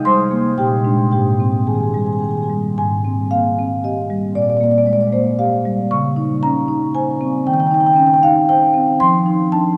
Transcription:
Already playing: C3 D#4
0.05 G3 C5 C6
0.31 A#3
0.58 A#2 G4 G5
0.84 G#3 D4
1.11 G#2 G4 G5
1.40 C4
1.67 D#3 G#4 G#5
1.74 G#4 G#5
1.81 G#4 G#5
1.87 G#4 G#5
1.94 G3 G#4 G#5
2.00 G#5
2.05 G#4 G#5
2.12 G#4 G#5
2.18 D#3 G#4 G#5
2.24 G#5
2.29 G#4 G#5
2.35 G#4 G#5
2.42 G#4 G#5
2.50 G3
2.78 G#2 G#5
3.05 C4
3.31 A#3 F5
3.59 C4
3.84 G4 D#5
4.10 G3
4.35 A#2 D5
4.42 D5
4.50 D5
4.57 A#3 D5
4.64 D5
4.71 D5
4.78 D5
4.86 G#3 D5
4.93 D5
5.01 D5
5.13 A#3 C5
5.39 G4 F5
5.66 G3
5.91 C#3 C#6
6.16 D#4
6.43 C#4 A#5
6.68 D#4
6.95 C5 G#5
7.21 C4
7.47 D#3 G5
7.54 G5
7.60 G5
7.67 G5
7.71 D#4 G5
7.80 G5
7.86 G5
7.93 C#4 G5
8.00 G5
8.07 G5
8.14 G5
8.23 D#4 F5
8.49 C5 G5
8.74 C4
9.00 F3 C6
9.26 D#4
9.52 D4 A5

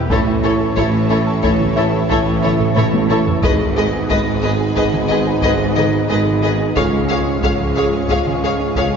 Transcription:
0.09 A1 A2 E3 A3 C#4 E4 A4 C#5, taiko
0.27 E4
0.43 E4 A4 C#5
0.60 A4
0.76 A1 A2 A3 E4 A4 C#5, taiko
0.94 C#4
1.10 C#4 E4 A4 C#5
1.27 A4
1.43 A1 A2 A3 E4 A4 C#5, taiko
1.60 E4, taiko mid
1.76 E4 A4 C#5
1.93 A4
2.10 A1 A2 A3 E4 A4 C#5, taiko
2.26 E4
2.43 E4 A4 C#5, taiko mid
2.60 A4, taiko low-mid
2.76 A1 A2 A3 E4 A4 C#5, taiko low-mid
2.94 taiko high
3.09 E4 A4 C#5, taiko low-mid
3.26 A4, taiko low
3.42 G#1 G#2 G#3 B3 D#4 G#4 B4 D#5, taiko
3.59 D#4
3.76 D#4 G#4 B4 D#5
3.93 G#4
4.09 G#1 G#2 G#3 G#4 B4 D#5, taiko
4.26 B3
4.43 B3 G#4 B4 D#5
4.61 G#4
4.76 G#1 G#2 G#3 G#4 B4 D#5, taiko
4.93 D#4, taiko mid
5.08 D#4 G#4 B4 D#5
5.27 G#4
5.42 G#1 G#2 G#3 G#4 B4 D#5, taiko
5.60 D#4
5.76 G#4 B4 D#5, taiko mid
5.94 G#4
6.09 G#1 G#2 G#3 G#4 B4 D#5
6.27 taiko mid
6.42 D#4 G#4 B4 D#5
6.60 G#4
6.75 C#2 G#2 C#3 G#3 C#4 F4 G#4 C#5 F5, taiko
6.93 G#3
7.10 G#3 G#4 C#5 F5
7.27 C#4
7.43 C#2 C#3 G#4 C#5 F5, taiko
7.60 F3
7.76 F3 G#4 C#5 F5
7.94 C#4
8.09 C#2 C#3 G#4 C#5 F5, taiko
8.26 G#3, taiko mid
8.43 G#3 G#4 C#5 F5
8.60 C#4
8.76 C#2 C#3 G#4 C#5 F5, taiko

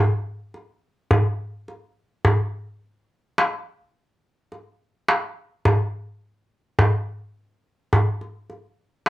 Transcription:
0.54 darbuka ka
1.11 darbuka dum
1.68 darbuka ka
2.25 darbuka dum
3.38 darbuka tek
4.52 darbuka ka
5.08 darbuka tek
5.65 darbuka dum
6.79 darbuka dum
7.93 darbuka dum
8.21 darbuka ka
8.50 darbuka ka

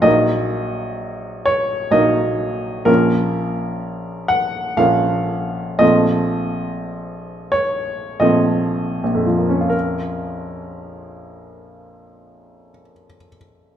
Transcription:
0.02 A#1 F#3 A#3 D#4 D#5
1.46 C#5
1.91 A#1 F#3 A#3 D#4 D#5
2.85 A#1 F3 A#3 C#4 A#4
4.28 F#5
4.77 A#1 F3 A#3 C#4 F5
5.79 A#1 F3 A3 C4 D#5
7.52 C#5
8.20 A#1 F3 A3 C4 D#5
9.04 A#1
9.15 F2
9.26 F3
9.38 A#3
9.49 C#4
9.61 F4
9.69 A#4

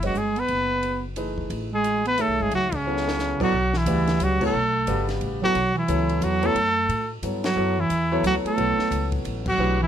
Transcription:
Already playing: F#1
0.03 F#3 G#3 C#4 F#4 B4 D#5, ride
0.15 G1 G#3 G#4, hi-hat pedal
0.36 B3 B4, ride
0.48 F#1, ride
0.83 ride
1.16 E3 A3 D#4 G#4 B4, hi-hat pedal, ride
1.38 kick
1.50 A1, ride
1.73 G#3 G#4
1.84 hi-hat pedal, ride
2.05 B3 B4, ride
2.18 D#3 A3 G#4 A4 C#5 E5, hi-hat pedal, ride
2.28 B1
2.40 G1 G#3 G#4
2.51 C#2 F#3 F#4, ride
2.72 C#3 C#4, kick, ride
2.87 F#3 B3 E4 A4 C#5
2.97 snare
3.08 snare
3.19 snare, hi-hat pedal
3.40 A#1 F#3 B3 E4 F#4 A4 D5, kick, crash
3.52 B1
3.74 E3 E4, snare
3.86 D2 C#3 G3 F#4 B4 D5, hi-hat pedal, ride
4.07 snare, ride
4.20 C#2 F#3 F#4, hi-hat pedal, ride
4.41 F#3 A3 B3 E4 A4 C#5, kick, crash
4.46 A4
4.54 B1
4.87 G1 C#3 G3 F#4 B4 D5, hi-hat pedal, ride
5.09 snare, ride
5.21 A1, ride
5.42 F#3 B3 E4 F#4 A4 C#5
5.55 B1, ride
5.75 E3 E4
5.88 C#2 F#3 B3 E4 A4 C#5, hi-hat pedal, ride
6.09 ride
6.21 E2 F#3 F#4, hi-hat pedal, ride
6.42 F#3 A3 B3 E4 A4 C#5, ride
6.55 F#2, ride
6.89 A2, ride
7.23 G2 F#3 B3 E4 A4 C#5, hi-hat pedal, ride
7.44 F#3 F#4, snare, ride
7.56 F#2 F#3 B3 E4 A4 C#5
7.78 E3 E4
7.90 E2, hi-hat pedal, ride
8.12 F#3 B3 E4 A4 C#5
8.23 D2 F#3 F#4, hi-hat pedal, ride
8.45 A3 A4, muted upright bass stroke, ride
8.57 B1 F#3 B3 E4 A4 C#5, ride
8.79 muted upright bass stroke, snare
8.91 C#2, hi-hat pedal, ride
9.12 kick, ride
9.25 A1, ride
9.46 F#3 F#4, kick, crash
9.58 B1 E3 A3 D4 G4 B4
9.80 E3 E4

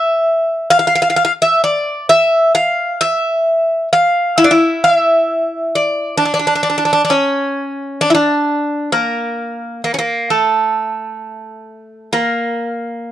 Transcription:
Already playing: E5
0.70 F5
0.79 F5
0.87 F5
0.95 F5
1.02 F5
1.10 F5
1.16 F5
1.25 F5
1.42 E5
1.64 D5
2.09 E5
2.55 F5
3.01 E5
3.93 F5
4.38 E4
4.44 D4
4.51 E4
4.84 F5
4.95 E5
5.75 D5
6.17 D4
6.25 D4
6.34 D4
6.39 D4
6.47 D4
6.55 D4
6.63 D4
6.70 D4
6.78 D4
6.85 D4
6.93 D4
7.05 D4
7.10 C#4
8.01 D4
8.10 E4
8.15 D4
8.92 A#3
9.84 A#3
9.94 C#4
9.99 A#3
10.30 A3
12.13 A#3

